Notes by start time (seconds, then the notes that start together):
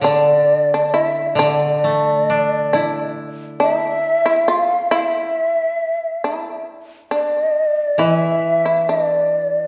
0.00 D3 D4 D5
0.74 D4
0.90 E4 E5
1.34 D3 D5
1.39 D4
1.84 A3
2.30 D4
2.73 D4 E4
3.60 D4 E5
3.79 E4
4.26 E4
4.48 F4 F5
4.91 E4 E5
6.24 E4
7.11 D4 D5
7.98 E3 E4 D#5
8.15 E5
8.65 E4
8.89 D4 D5
9.58 C#4